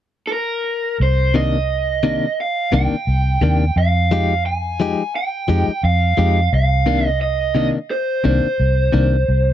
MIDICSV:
0, 0, Header, 1, 5, 480
1, 0, Start_track
1, 0, Key_signature, -3, "minor"
1, 0, Tempo, 690131
1, 696, Time_signature, 4, 2, 24, 8
1, 6630, End_track
2, 0, Start_track
2, 0, Title_t, "Overdriven electric guitar"
2, 0, Program_c, 0, 29
2, 191, Note_on_c, 0, 69, 56
2, 222, Note_off_c, 0, 69, 0
2, 224, Note_on_c, 0, 70, 65
2, 672, Note_off_c, 0, 70, 0
2, 714, Note_on_c, 0, 72, 88
2, 928, Note_off_c, 0, 72, 0
2, 946, Note_on_c, 0, 75, 84
2, 1671, Note_off_c, 0, 75, 0
2, 1674, Note_on_c, 0, 77, 87
2, 1901, Note_off_c, 0, 77, 0
2, 1904, Note_on_c, 0, 79, 96
2, 2626, Note_off_c, 0, 79, 0
2, 2629, Note_on_c, 0, 77, 96
2, 3074, Note_off_c, 0, 77, 0
2, 3101, Note_on_c, 0, 80, 95
2, 3585, Note_off_c, 0, 80, 0
2, 3588, Note_on_c, 0, 79, 96
2, 4064, Note_off_c, 0, 79, 0
2, 4067, Note_on_c, 0, 77, 80
2, 4543, Note_off_c, 0, 77, 0
2, 4552, Note_on_c, 0, 77, 91
2, 4914, Note_off_c, 0, 77, 0
2, 4914, Note_on_c, 0, 75, 91
2, 5016, Note_off_c, 0, 75, 0
2, 5019, Note_on_c, 0, 75, 86
2, 5256, Note_off_c, 0, 75, 0
2, 5265, Note_on_c, 0, 75, 82
2, 5328, Note_off_c, 0, 75, 0
2, 5502, Note_on_c, 0, 72, 83
2, 5734, Note_off_c, 0, 72, 0
2, 5742, Note_on_c, 0, 72, 76
2, 6630, Note_off_c, 0, 72, 0
2, 6630, End_track
3, 0, Start_track
3, 0, Title_t, "Clean electric guitar"
3, 0, Program_c, 1, 27
3, 933, Note_on_c, 1, 48, 74
3, 938, Note_on_c, 1, 51, 74
3, 941, Note_on_c, 1, 58, 66
3, 942, Note_on_c, 1, 62, 80
3, 1087, Note_off_c, 1, 48, 0
3, 1089, Note_off_c, 1, 51, 0
3, 1091, Note_off_c, 1, 58, 0
3, 1091, Note_off_c, 1, 62, 0
3, 1413, Note_on_c, 1, 48, 75
3, 1414, Note_on_c, 1, 51, 74
3, 1418, Note_on_c, 1, 58, 73
3, 1422, Note_on_c, 1, 62, 85
3, 1567, Note_off_c, 1, 48, 0
3, 1567, Note_off_c, 1, 51, 0
3, 1569, Note_off_c, 1, 58, 0
3, 1571, Note_off_c, 1, 62, 0
3, 1891, Note_on_c, 1, 48, 66
3, 1896, Note_on_c, 1, 51, 77
3, 1901, Note_on_c, 1, 58, 80
3, 1903, Note_on_c, 1, 62, 85
3, 2046, Note_off_c, 1, 48, 0
3, 2048, Note_off_c, 1, 51, 0
3, 2051, Note_off_c, 1, 58, 0
3, 2052, Note_off_c, 1, 62, 0
3, 2375, Note_on_c, 1, 48, 72
3, 2382, Note_on_c, 1, 51, 77
3, 2386, Note_on_c, 1, 58, 78
3, 2387, Note_on_c, 1, 62, 77
3, 2528, Note_off_c, 1, 48, 0
3, 2531, Note_off_c, 1, 51, 0
3, 2533, Note_off_c, 1, 58, 0
3, 2534, Note_off_c, 1, 62, 0
3, 2861, Note_on_c, 1, 53, 72
3, 2862, Note_on_c, 1, 56, 78
3, 2867, Note_on_c, 1, 63, 87
3, 2871, Note_on_c, 1, 67, 86
3, 3010, Note_off_c, 1, 53, 0
3, 3011, Note_off_c, 1, 56, 0
3, 3013, Note_off_c, 1, 63, 0
3, 3015, Note_off_c, 1, 67, 0
3, 3337, Note_on_c, 1, 53, 72
3, 3343, Note_on_c, 1, 56, 72
3, 3346, Note_on_c, 1, 63, 84
3, 3349, Note_on_c, 1, 67, 88
3, 3489, Note_off_c, 1, 53, 0
3, 3491, Note_off_c, 1, 56, 0
3, 3493, Note_off_c, 1, 63, 0
3, 3495, Note_off_c, 1, 67, 0
3, 3812, Note_on_c, 1, 53, 72
3, 3817, Note_on_c, 1, 56, 75
3, 3822, Note_on_c, 1, 63, 83
3, 3823, Note_on_c, 1, 67, 79
3, 3966, Note_off_c, 1, 53, 0
3, 3969, Note_off_c, 1, 56, 0
3, 3971, Note_off_c, 1, 63, 0
3, 3971, Note_off_c, 1, 67, 0
3, 4294, Note_on_c, 1, 53, 72
3, 4297, Note_on_c, 1, 56, 72
3, 4302, Note_on_c, 1, 63, 80
3, 4304, Note_on_c, 1, 67, 74
3, 4447, Note_off_c, 1, 53, 0
3, 4449, Note_off_c, 1, 56, 0
3, 4451, Note_off_c, 1, 63, 0
3, 4452, Note_off_c, 1, 67, 0
3, 4772, Note_on_c, 1, 48, 78
3, 4775, Note_on_c, 1, 51, 74
3, 4779, Note_on_c, 1, 58, 80
3, 4785, Note_on_c, 1, 62, 77
3, 4926, Note_off_c, 1, 48, 0
3, 4928, Note_off_c, 1, 51, 0
3, 4930, Note_off_c, 1, 58, 0
3, 4933, Note_off_c, 1, 62, 0
3, 5249, Note_on_c, 1, 48, 78
3, 5256, Note_on_c, 1, 51, 74
3, 5257, Note_on_c, 1, 58, 81
3, 5262, Note_on_c, 1, 62, 83
3, 5405, Note_off_c, 1, 48, 0
3, 5408, Note_off_c, 1, 51, 0
3, 5409, Note_off_c, 1, 58, 0
3, 5411, Note_off_c, 1, 62, 0
3, 5731, Note_on_c, 1, 48, 74
3, 5735, Note_on_c, 1, 51, 73
3, 5739, Note_on_c, 1, 58, 77
3, 5740, Note_on_c, 1, 62, 84
3, 5886, Note_off_c, 1, 48, 0
3, 5888, Note_off_c, 1, 51, 0
3, 5889, Note_off_c, 1, 58, 0
3, 5890, Note_off_c, 1, 62, 0
3, 6207, Note_on_c, 1, 48, 66
3, 6211, Note_on_c, 1, 51, 78
3, 6215, Note_on_c, 1, 58, 82
3, 6218, Note_on_c, 1, 62, 79
3, 6364, Note_off_c, 1, 48, 0
3, 6366, Note_off_c, 1, 51, 0
3, 6368, Note_off_c, 1, 58, 0
3, 6369, Note_off_c, 1, 62, 0
3, 6630, End_track
4, 0, Start_track
4, 0, Title_t, "Fingered electric bass"
4, 0, Program_c, 2, 33
4, 696, Note_on_c, 2, 36, 90
4, 1514, Note_off_c, 2, 36, 0
4, 1896, Note_on_c, 2, 36, 82
4, 2007, Note_off_c, 2, 36, 0
4, 2136, Note_on_c, 2, 36, 80
4, 2340, Note_off_c, 2, 36, 0
4, 2372, Note_on_c, 2, 39, 91
4, 2578, Note_off_c, 2, 39, 0
4, 2615, Note_on_c, 2, 41, 86
4, 3434, Note_off_c, 2, 41, 0
4, 3816, Note_on_c, 2, 41, 94
4, 3927, Note_off_c, 2, 41, 0
4, 4058, Note_on_c, 2, 41, 78
4, 4261, Note_off_c, 2, 41, 0
4, 4298, Note_on_c, 2, 41, 90
4, 4501, Note_off_c, 2, 41, 0
4, 4539, Note_on_c, 2, 36, 93
4, 5356, Note_off_c, 2, 36, 0
4, 5738, Note_on_c, 2, 36, 94
4, 5848, Note_off_c, 2, 36, 0
4, 5979, Note_on_c, 2, 36, 80
4, 6182, Note_off_c, 2, 36, 0
4, 6216, Note_on_c, 2, 36, 96
4, 6420, Note_off_c, 2, 36, 0
4, 6458, Note_on_c, 2, 36, 90
4, 6630, Note_off_c, 2, 36, 0
4, 6630, End_track
5, 0, Start_track
5, 0, Title_t, "Muted fingered electric bass strokes"
5, 2030, Note_on_c, 9, 29, 34
5, 2099, Note_off_c, 9, 29, 0
5, 3949, Note_on_c, 9, 29, 35
5, 4018, Note_off_c, 9, 29, 0
5, 5871, Note_on_c, 9, 29, 34
5, 5940, Note_off_c, 9, 29, 0
5, 6630, End_track
0, 0, End_of_file